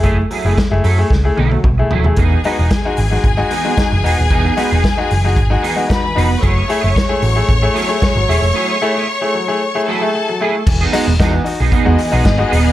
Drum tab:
CC |----------------|----------------|----------------|----------------|
HH |x-o-x-o---------|x-o-x-o-x-o-x-o-|x-o-x-o-x-o-x-o-|x-o-x-o-x-o-x-o-|
SD |----o---o-------|----o-------o---|----o-------o---|----o-------o---|
T1 |----------oo----|----------------|----------------|----------------|
T2 |------------o---|----------------|----------------|----------------|
FT |--------------oo|----------------|----------------|----------------|
BD |o---o---o---o---|o---o---o---o---|o---o---o---o---|o---o---o---o---|

CC |----------------|x---------------|
HH |----------------|--o-x-o-x-o-x-o-|
SD |----------------|----o-------o---|
T1 |----------------|----------------|
T2 |----------------|----------------|
FT |----------------|----------------|
BD |----------------|o---o---o---o---|